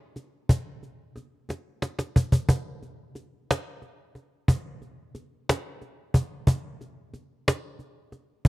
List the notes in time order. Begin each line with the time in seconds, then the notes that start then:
0.16 cajon slap
0.49 cajon bass
0.83 cajon slap
1.16 cajon slap
1.17 cajon slap
1.49 cajon slap
1.82 cajon slap
1.99 cajon slap
2.16 cajon bass
2.32 cajon bass
2.49 cajon bass
2.82 cajon slap
3.15 cajon slap
3.51 cajon slap
3.82 cajon slap
4.15 cajon slap
4.48 cajon bass
4.82 cajon slap
5.15 cajon slap
5.49 cajon slap
5.82 cajon slap
6.14 cajon bass
6.47 cajon bass
6.81 cajon slap
7.14 cajon slap
7.48 cajon slap
7.79 cajon slap
8.12 cajon slap
8.45 cajon bass